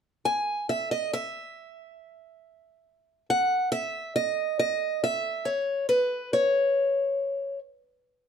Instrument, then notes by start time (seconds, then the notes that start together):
steel-string acoustic guitar
0.25 G#5
0.69 E5
0.91 D#5
1.13 E5
3.30 F#5
3.72 E5
4.16 D#5
4.59 D#5
5.04 E5
5.45 C#5
5.89 B4
6.33 C#5